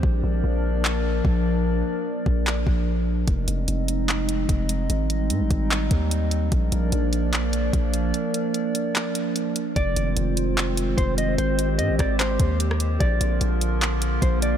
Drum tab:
HH |----------------|----------------|x-x-x-x-x-x-x-x-|x-x-x-x-x-x-x-x-|
CP |--------x-------|--------x-------|--------x-------|--------x-------|
SD |----------------|----------------|----------------|----------------|
BD |o-----------o---|------o---o-----|o-----------o---|------o---o-----|

HH |x-x-x-x-x-x-x-x-|x-x-x-x-x-x-x-x-|x-x-x-x-x-x-x-x-|x-x-x-x-x-x-x-x-|
CP |--------x-------|--------x-------|--------x-------|--------x-------|
SD |----------------|----------------|----------------|------r------r--|
BD |o-----------o---|----------------|o-----------o---|------o---o-----|

HH |x-x-x-x-x-x-x-x-|
CP |--------x-------|
SD |----------------|
BD |o-----------o---|